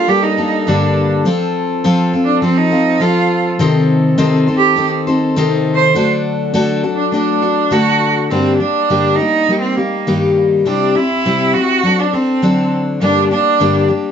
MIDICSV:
0, 0, Header, 1, 4, 480
1, 0, Start_track
1, 0, Tempo, 587659
1, 1029, Time_signature, 4, 2, 24, 8
1, 11531, End_track
2, 0, Start_track
2, 0, Title_t, "Cello"
2, 0, Program_c, 0, 42
2, 67, Note_on_c, 0, 67, 95
2, 186, Note_on_c, 0, 63, 83
2, 198, Note_off_c, 0, 67, 0
2, 550, Note_on_c, 0, 62, 73
2, 562, Note_off_c, 0, 63, 0
2, 909, Note_off_c, 0, 62, 0
2, 1834, Note_on_c, 0, 62, 83
2, 1979, Note_off_c, 0, 62, 0
2, 1984, Note_on_c, 0, 60, 82
2, 2103, Note_on_c, 0, 63, 88
2, 2115, Note_off_c, 0, 60, 0
2, 2459, Note_on_c, 0, 65, 95
2, 2471, Note_off_c, 0, 63, 0
2, 2820, Note_off_c, 0, 65, 0
2, 3735, Note_on_c, 0, 67, 104
2, 3960, Note_off_c, 0, 67, 0
2, 4699, Note_on_c, 0, 72, 105
2, 4922, Note_off_c, 0, 72, 0
2, 5681, Note_on_c, 0, 62, 77
2, 5819, Note_off_c, 0, 62, 0
2, 5832, Note_on_c, 0, 62, 82
2, 6306, Note_on_c, 0, 66, 88
2, 6318, Note_off_c, 0, 62, 0
2, 6664, Note_off_c, 0, 66, 0
2, 6779, Note_on_c, 0, 60, 80
2, 7003, Note_off_c, 0, 60, 0
2, 7008, Note_on_c, 0, 62, 90
2, 7478, Note_on_c, 0, 63, 101
2, 7490, Note_off_c, 0, 62, 0
2, 7838, Note_off_c, 0, 63, 0
2, 7843, Note_on_c, 0, 60, 73
2, 7969, Note_on_c, 0, 58, 73
2, 7981, Note_off_c, 0, 60, 0
2, 8459, Note_off_c, 0, 58, 0
2, 8713, Note_on_c, 0, 62, 77
2, 8949, Note_on_c, 0, 64, 91
2, 8961, Note_off_c, 0, 62, 0
2, 9422, Note_on_c, 0, 66, 98
2, 9435, Note_off_c, 0, 64, 0
2, 9792, Note_on_c, 0, 62, 81
2, 9804, Note_off_c, 0, 66, 0
2, 9912, Note_on_c, 0, 60, 78
2, 9924, Note_off_c, 0, 62, 0
2, 10392, Note_off_c, 0, 60, 0
2, 10631, Note_on_c, 0, 62, 98
2, 10855, Note_off_c, 0, 62, 0
2, 10866, Note_on_c, 0, 62, 96
2, 11317, Note_off_c, 0, 62, 0
2, 11531, End_track
3, 0, Start_track
3, 0, Title_t, "Steel-string acoustic guitar"
3, 0, Program_c, 1, 25
3, 65, Note_on_c, 1, 55, 60
3, 68, Note_on_c, 1, 58, 59
3, 77, Note_on_c, 1, 62, 63
3, 82, Note_on_c, 1, 69, 58
3, 296, Note_off_c, 1, 69, 0
3, 303, Note_off_c, 1, 62, 0
3, 306, Note_on_c, 1, 69, 51
3, 308, Note_off_c, 1, 55, 0
3, 310, Note_off_c, 1, 58, 0
3, 313, Note_on_c, 1, 62, 50
3, 321, Note_on_c, 1, 58, 45
3, 323, Note_on_c, 1, 55, 39
3, 546, Note_off_c, 1, 55, 0
3, 546, Note_off_c, 1, 62, 0
3, 546, Note_on_c, 1, 43, 79
3, 548, Note_off_c, 1, 58, 0
3, 548, Note_off_c, 1, 69, 0
3, 552, Note_on_c, 1, 50, 74
3, 555, Note_on_c, 1, 55, 73
3, 556, Note_on_c, 1, 62, 86
3, 557, Note_on_c, 1, 58, 73
3, 565, Note_on_c, 1, 69, 78
3, 1019, Note_off_c, 1, 55, 0
3, 1022, Note_on_c, 1, 53, 80
3, 1025, Note_off_c, 1, 58, 0
3, 1026, Note_off_c, 1, 43, 0
3, 1028, Note_on_c, 1, 60, 84
3, 1030, Note_off_c, 1, 50, 0
3, 1031, Note_off_c, 1, 62, 0
3, 1035, Note_on_c, 1, 65, 83
3, 1036, Note_off_c, 1, 69, 0
3, 1039, Note_on_c, 1, 69, 88
3, 1494, Note_off_c, 1, 53, 0
3, 1504, Note_off_c, 1, 60, 0
3, 1504, Note_on_c, 1, 53, 90
3, 1506, Note_off_c, 1, 65, 0
3, 1508, Note_on_c, 1, 60, 87
3, 1513, Note_off_c, 1, 69, 0
3, 1516, Note_on_c, 1, 65, 91
3, 1516, Note_on_c, 1, 69, 91
3, 1731, Note_off_c, 1, 69, 0
3, 1739, Note_off_c, 1, 65, 0
3, 1741, Note_on_c, 1, 69, 49
3, 1745, Note_off_c, 1, 53, 0
3, 1746, Note_off_c, 1, 60, 0
3, 1749, Note_on_c, 1, 65, 47
3, 1757, Note_on_c, 1, 60, 43
3, 1974, Note_off_c, 1, 60, 0
3, 1976, Note_off_c, 1, 65, 0
3, 1976, Note_on_c, 1, 53, 63
3, 1983, Note_off_c, 1, 69, 0
3, 1984, Note_on_c, 1, 60, 61
3, 1986, Note_on_c, 1, 65, 59
3, 1992, Note_on_c, 1, 69, 67
3, 2205, Note_off_c, 1, 69, 0
3, 2212, Note_off_c, 1, 65, 0
3, 2214, Note_on_c, 1, 69, 57
3, 2220, Note_off_c, 1, 53, 0
3, 2222, Note_on_c, 1, 65, 49
3, 2224, Note_off_c, 1, 60, 0
3, 2234, Note_on_c, 1, 60, 43
3, 2447, Note_off_c, 1, 60, 0
3, 2450, Note_on_c, 1, 53, 72
3, 2452, Note_off_c, 1, 65, 0
3, 2454, Note_off_c, 1, 69, 0
3, 2457, Note_on_c, 1, 60, 74
3, 2462, Note_on_c, 1, 65, 80
3, 2464, Note_on_c, 1, 69, 81
3, 2931, Note_off_c, 1, 60, 0
3, 2933, Note_on_c, 1, 51, 89
3, 2934, Note_on_c, 1, 48, 86
3, 2935, Note_off_c, 1, 53, 0
3, 2939, Note_off_c, 1, 65, 0
3, 2940, Note_on_c, 1, 60, 91
3, 2942, Note_off_c, 1, 69, 0
3, 2942, Note_on_c, 1, 63, 86
3, 2942, Note_on_c, 1, 69, 90
3, 2949, Note_on_c, 1, 72, 94
3, 3401, Note_off_c, 1, 51, 0
3, 3403, Note_off_c, 1, 48, 0
3, 3405, Note_off_c, 1, 60, 0
3, 3410, Note_off_c, 1, 63, 0
3, 3411, Note_on_c, 1, 51, 92
3, 3413, Note_off_c, 1, 72, 0
3, 3413, Note_on_c, 1, 48, 80
3, 3415, Note_on_c, 1, 60, 97
3, 3420, Note_on_c, 1, 63, 92
3, 3421, Note_off_c, 1, 69, 0
3, 3423, Note_on_c, 1, 72, 95
3, 3424, Note_on_c, 1, 69, 98
3, 3642, Note_off_c, 1, 72, 0
3, 3651, Note_off_c, 1, 69, 0
3, 3652, Note_on_c, 1, 72, 49
3, 3655, Note_off_c, 1, 63, 0
3, 3656, Note_off_c, 1, 48, 0
3, 3656, Note_off_c, 1, 51, 0
3, 3658, Note_off_c, 1, 60, 0
3, 3661, Note_on_c, 1, 69, 56
3, 3665, Note_on_c, 1, 63, 42
3, 3670, Note_on_c, 1, 60, 46
3, 3878, Note_off_c, 1, 60, 0
3, 3888, Note_on_c, 1, 60, 62
3, 3889, Note_off_c, 1, 63, 0
3, 3890, Note_off_c, 1, 69, 0
3, 3896, Note_off_c, 1, 72, 0
3, 3899, Note_on_c, 1, 63, 64
3, 3900, Note_on_c, 1, 69, 59
3, 3908, Note_on_c, 1, 72, 68
3, 4131, Note_off_c, 1, 72, 0
3, 4134, Note_off_c, 1, 60, 0
3, 4139, Note_off_c, 1, 63, 0
3, 4140, Note_off_c, 1, 69, 0
3, 4141, Note_on_c, 1, 72, 64
3, 4150, Note_on_c, 1, 69, 61
3, 4153, Note_on_c, 1, 63, 56
3, 4161, Note_on_c, 1, 60, 49
3, 4377, Note_off_c, 1, 60, 0
3, 4380, Note_off_c, 1, 63, 0
3, 4380, Note_off_c, 1, 72, 0
3, 4380, Note_on_c, 1, 51, 81
3, 4382, Note_on_c, 1, 48, 84
3, 4384, Note_off_c, 1, 69, 0
3, 4387, Note_on_c, 1, 60, 79
3, 4390, Note_on_c, 1, 63, 93
3, 4391, Note_on_c, 1, 72, 97
3, 4393, Note_on_c, 1, 69, 93
3, 4857, Note_off_c, 1, 48, 0
3, 4858, Note_off_c, 1, 60, 0
3, 4858, Note_off_c, 1, 69, 0
3, 4859, Note_off_c, 1, 51, 0
3, 4860, Note_off_c, 1, 63, 0
3, 4860, Note_on_c, 1, 50, 79
3, 4861, Note_on_c, 1, 57, 76
3, 4864, Note_on_c, 1, 62, 79
3, 4865, Note_off_c, 1, 72, 0
3, 4868, Note_on_c, 1, 69, 90
3, 4870, Note_on_c, 1, 66, 79
3, 5328, Note_off_c, 1, 50, 0
3, 5330, Note_off_c, 1, 57, 0
3, 5335, Note_off_c, 1, 62, 0
3, 5338, Note_on_c, 1, 50, 83
3, 5339, Note_off_c, 1, 66, 0
3, 5339, Note_off_c, 1, 69, 0
3, 5340, Note_on_c, 1, 57, 93
3, 5345, Note_on_c, 1, 62, 88
3, 5349, Note_on_c, 1, 66, 98
3, 5349, Note_on_c, 1, 69, 102
3, 5570, Note_off_c, 1, 69, 0
3, 5577, Note_off_c, 1, 66, 0
3, 5578, Note_off_c, 1, 50, 0
3, 5579, Note_off_c, 1, 57, 0
3, 5580, Note_on_c, 1, 69, 55
3, 5582, Note_off_c, 1, 62, 0
3, 5587, Note_on_c, 1, 66, 50
3, 5593, Note_on_c, 1, 62, 41
3, 5817, Note_on_c, 1, 57, 58
3, 5818, Note_off_c, 1, 62, 0
3, 5820, Note_off_c, 1, 69, 0
3, 5823, Note_off_c, 1, 66, 0
3, 5828, Note_on_c, 1, 62, 59
3, 5833, Note_on_c, 1, 66, 62
3, 5837, Note_on_c, 1, 69, 64
3, 6050, Note_off_c, 1, 69, 0
3, 6054, Note_off_c, 1, 66, 0
3, 6058, Note_off_c, 1, 57, 0
3, 6059, Note_on_c, 1, 69, 52
3, 6064, Note_off_c, 1, 62, 0
3, 6064, Note_on_c, 1, 66, 47
3, 6074, Note_on_c, 1, 62, 39
3, 6294, Note_off_c, 1, 62, 0
3, 6294, Note_off_c, 1, 66, 0
3, 6294, Note_on_c, 1, 50, 78
3, 6300, Note_off_c, 1, 69, 0
3, 6302, Note_on_c, 1, 57, 72
3, 6304, Note_on_c, 1, 62, 75
3, 6304, Note_on_c, 1, 66, 77
3, 6309, Note_on_c, 1, 69, 90
3, 6778, Note_off_c, 1, 50, 0
3, 6782, Note_off_c, 1, 57, 0
3, 6783, Note_off_c, 1, 62, 0
3, 6783, Note_off_c, 1, 66, 0
3, 6783, Note_on_c, 1, 43, 69
3, 6785, Note_off_c, 1, 69, 0
3, 6787, Note_on_c, 1, 50, 66
3, 6789, Note_on_c, 1, 55, 66
3, 6791, Note_on_c, 1, 58, 67
3, 6792, Note_on_c, 1, 62, 69
3, 6795, Note_on_c, 1, 67, 72
3, 7013, Note_off_c, 1, 67, 0
3, 7020, Note_off_c, 1, 62, 0
3, 7022, Note_off_c, 1, 43, 0
3, 7023, Note_off_c, 1, 58, 0
3, 7023, Note_on_c, 1, 67, 44
3, 7024, Note_off_c, 1, 50, 0
3, 7025, Note_off_c, 1, 55, 0
3, 7030, Note_on_c, 1, 62, 43
3, 7033, Note_on_c, 1, 58, 41
3, 7036, Note_on_c, 1, 55, 40
3, 7261, Note_off_c, 1, 55, 0
3, 7263, Note_off_c, 1, 67, 0
3, 7265, Note_off_c, 1, 58, 0
3, 7266, Note_off_c, 1, 62, 0
3, 7268, Note_on_c, 1, 43, 63
3, 7270, Note_on_c, 1, 55, 71
3, 7271, Note_on_c, 1, 50, 71
3, 7275, Note_on_c, 1, 58, 65
3, 7275, Note_on_c, 1, 62, 69
3, 7278, Note_on_c, 1, 67, 79
3, 7497, Note_off_c, 1, 67, 0
3, 7505, Note_off_c, 1, 62, 0
3, 7506, Note_off_c, 1, 43, 0
3, 7507, Note_off_c, 1, 50, 0
3, 7507, Note_off_c, 1, 55, 0
3, 7507, Note_on_c, 1, 67, 46
3, 7509, Note_off_c, 1, 58, 0
3, 7515, Note_on_c, 1, 62, 45
3, 7519, Note_on_c, 1, 58, 43
3, 7523, Note_on_c, 1, 55, 37
3, 7738, Note_off_c, 1, 55, 0
3, 7744, Note_off_c, 1, 58, 0
3, 7745, Note_off_c, 1, 67, 0
3, 7748, Note_on_c, 1, 55, 51
3, 7749, Note_off_c, 1, 62, 0
3, 7753, Note_on_c, 1, 58, 53
3, 7762, Note_on_c, 1, 63, 58
3, 7767, Note_on_c, 1, 67, 57
3, 7973, Note_off_c, 1, 67, 0
3, 7978, Note_off_c, 1, 63, 0
3, 7983, Note_on_c, 1, 67, 46
3, 7986, Note_off_c, 1, 55, 0
3, 7986, Note_off_c, 1, 58, 0
3, 7988, Note_on_c, 1, 63, 45
3, 7996, Note_on_c, 1, 58, 39
3, 8001, Note_on_c, 1, 55, 41
3, 8219, Note_off_c, 1, 58, 0
3, 8221, Note_off_c, 1, 55, 0
3, 8221, Note_off_c, 1, 63, 0
3, 8223, Note_off_c, 1, 67, 0
3, 8225, Note_on_c, 1, 43, 63
3, 8225, Note_on_c, 1, 51, 65
3, 8229, Note_on_c, 1, 58, 69
3, 8230, Note_on_c, 1, 55, 71
3, 8230, Note_on_c, 1, 63, 73
3, 8232, Note_on_c, 1, 67, 75
3, 8696, Note_off_c, 1, 55, 0
3, 8699, Note_off_c, 1, 51, 0
3, 8702, Note_on_c, 1, 48, 68
3, 8704, Note_off_c, 1, 67, 0
3, 8706, Note_off_c, 1, 58, 0
3, 8706, Note_on_c, 1, 55, 65
3, 8707, Note_off_c, 1, 43, 0
3, 8708, Note_off_c, 1, 63, 0
3, 8709, Note_on_c, 1, 60, 67
3, 8711, Note_on_c, 1, 64, 70
3, 8714, Note_on_c, 1, 67, 77
3, 8939, Note_off_c, 1, 67, 0
3, 8945, Note_off_c, 1, 48, 0
3, 8947, Note_off_c, 1, 55, 0
3, 8947, Note_off_c, 1, 64, 0
3, 8949, Note_off_c, 1, 60, 0
3, 8949, Note_on_c, 1, 67, 50
3, 8957, Note_on_c, 1, 64, 44
3, 8968, Note_on_c, 1, 60, 40
3, 9188, Note_off_c, 1, 60, 0
3, 9189, Note_off_c, 1, 67, 0
3, 9190, Note_off_c, 1, 64, 0
3, 9192, Note_on_c, 1, 48, 73
3, 9197, Note_on_c, 1, 55, 71
3, 9198, Note_on_c, 1, 60, 76
3, 9200, Note_on_c, 1, 64, 72
3, 9205, Note_on_c, 1, 67, 81
3, 9416, Note_off_c, 1, 67, 0
3, 9426, Note_on_c, 1, 67, 51
3, 9429, Note_off_c, 1, 64, 0
3, 9431, Note_off_c, 1, 48, 0
3, 9434, Note_off_c, 1, 55, 0
3, 9434, Note_off_c, 1, 60, 0
3, 9439, Note_on_c, 1, 64, 43
3, 9446, Note_on_c, 1, 60, 42
3, 9664, Note_off_c, 1, 60, 0
3, 9666, Note_on_c, 1, 54, 53
3, 9668, Note_off_c, 1, 67, 0
3, 9673, Note_off_c, 1, 64, 0
3, 9674, Note_on_c, 1, 60, 60
3, 9676, Note_on_c, 1, 62, 57
3, 9685, Note_on_c, 1, 69, 59
3, 9900, Note_off_c, 1, 69, 0
3, 9909, Note_off_c, 1, 54, 0
3, 9909, Note_off_c, 1, 62, 0
3, 9909, Note_on_c, 1, 69, 51
3, 9913, Note_off_c, 1, 60, 0
3, 9919, Note_on_c, 1, 62, 45
3, 9930, Note_on_c, 1, 60, 37
3, 10143, Note_off_c, 1, 60, 0
3, 10145, Note_on_c, 1, 50, 63
3, 10146, Note_off_c, 1, 62, 0
3, 10148, Note_off_c, 1, 69, 0
3, 10148, Note_on_c, 1, 54, 66
3, 10153, Note_on_c, 1, 60, 73
3, 10156, Note_on_c, 1, 62, 77
3, 10157, Note_on_c, 1, 69, 75
3, 10621, Note_off_c, 1, 50, 0
3, 10627, Note_on_c, 1, 43, 68
3, 10628, Note_off_c, 1, 54, 0
3, 10630, Note_off_c, 1, 62, 0
3, 10631, Note_on_c, 1, 50, 72
3, 10631, Note_on_c, 1, 55, 78
3, 10632, Note_off_c, 1, 60, 0
3, 10635, Note_off_c, 1, 69, 0
3, 10635, Note_on_c, 1, 58, 74
3, 10640, Note_on_c, 1, 62, 75
3, 10641, Note_on_c, 1, 67, 78
3, 10861, Note_off_c, 1, 67, 0
3, 10867, Note_off_c, 1, 62, 0
3, 10870, Note_off_c, 1, 43, 0
3, 10870, Note_on_c, 1, 67, 50
3, 10871, Note_off_c, 1, 58, 0
3, 10872, Note_off_c, 1, 50, 0
3, 10872, Note_off_c, 1, 55, 0
3, 10877, Note_on_c, 1, 62, 47
3, 10880, Note_on_c, 1, 58, 45
3, 10890, Note_on_c, 1, 55, 44
3, 11104, Note_off_c, 1, 55, 0
3, 11105, Note_off_c, 1, 62, 0
3, 11106, Note_off_c, 1, 58, 0
3, 11107, Note_on_c, 1, 43, 73
3, 11110, Note_off_c, 1, 67, 0
3, 11111, Note_on_c, 1, 50, 73
3, 11113, Note_on_c, 1, 55, 77
3, 11115, Note_on_c, 1, 62, 79
3, 11116, Note_on_c, 1, 58, 76
3, 11120, Note_on_c, 1, 67, 81
3, 11330, Note_off_c, 1, 67, 0
3, 11338, Note_off_c, 1, 62, 0
3, 11340, Note_on_c, 1, 67, 49
3, 11344, Note_off_c, 1, 58, 0
3, 11347, Note_on_c, 1, 62, 48
3, 11350, Note_off_c, 1, 43, 0
3, 11350, Note_off_c, 1, 55, 0
3, 11352, Note_off_c, 1, 50, 0
3, 11354, Note_on_c, 1, 58, 42
3, 11360, Note_on_c, 1, 55, 41
3, 11531, Note_off_c, 1, 55, 0
3, 11531, Note_off_c, 1, 58, 0
3, 11531, Note_off_c, 1, 62, 0
3, 11531, Note_off_c, 1, 67, 0
3, 11531, End_track
4, 0, Start_track
4, 0, Title_t, "Brass ensemble"
4, 0, Program_c, 2, 61
4, 0, Note_on_c, 2, 55, 72
4, 0, Note_on_c, 2, 58, 67
4, 0, Note_on_c, 2, 69, 78
4, 1000, Note_off_c, 2, 55, 0
4, 1001, Note_off_c, 2, 58, 0
4, 1018, Note_on_c, 2, 53, 75
4, 1025, Note_on_c, 2, 60, 74
4, 2918, Note_off_c, 2, 53, 0
4, 2918, Note_off_c, 2, 60, 0
4, 2928, Note_on_c, 2, 60, 72
4, 2931, Note_on_c, 2, 51, 79
4, 4833, Note_off_c, 2, 60, 0
4, 4834, Note_off_c, 2, 51, 0
4, 4853, Note_on_c, 2, 62, 73
4, 4857, Note_on_c, 2, 54, 81
4, 6737, Note_off_c, 2, 69, 0
4, 6759, Note_off_c, 2, 62, 0
4, 6761, Note_off_c, 2, 54, 0
4, 11531, End_track
0, 0, End_of_file